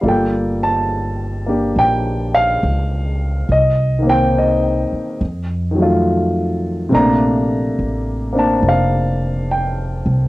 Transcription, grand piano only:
0.01 3.47 G3 soft
0.01 1.45 A#3 soft
0.01 3.48 F4 soft
0.06 3.49 A4 soft
0.06 0.65 G5 medium
0.63 1.44 A5 medium
1.46 3.47 A#3 soft
1.46 3.48 D4 soft
1.46 3.49 G4 soft
1.79 2.36 G5 medium
2.34 3.45 F5 medium
3.52 4.08 D#5 medium
3.99 5.17 D#3 soft
3.99 5.19 A#3 soft
4.07 5.21 C4 soft
4.07 5.22 D#4 soft
4.07 4.35 G5 medium
4.38 6.04 D#5 medium
5.71 6.89 D#3 soft
5.75 6.91 F#3 soft
5.75 6.89 A3 soft
5.82 6.94 F4 medium
6.89 10.28 C3 medium
6.89 10.28 A3 soft
6.89 8.31 A#3 soft
6.94 8.34 D4 medium
6.94 8.40 A#5 medium
8.33 10.28 A#3 soft
8.33 10.28 C4 soft
8.33 10.28 D4 soft
8.39 8.64 A5 medium
8.69 9.48 F5 medium
9.52 10.28 G5 medium

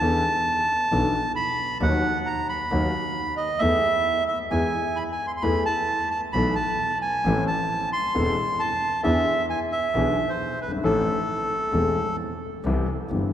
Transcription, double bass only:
0.00 0.20 E2 medium
0.92 1.11 B1 medium
1.81 2.00 D#2 medium
2.71 2.90 D#2 medium
3.60 3.80 E2 medium
4.51 4.70 E2 medium
5.43 5.62 E2 medium
6.33 6.53 B1 medium
7.25 7.44 A1 medium
8.16 8.34 E1 medium
9.05 9.23 E2 medium
9.94 10.13 B1 medium
10.61 10.82 G1 medium
10.82 11.02 A1 medium
11.73 11.93 E1 medium
12.64 12.84 C2 medium
13.10 13.30 G1 medium

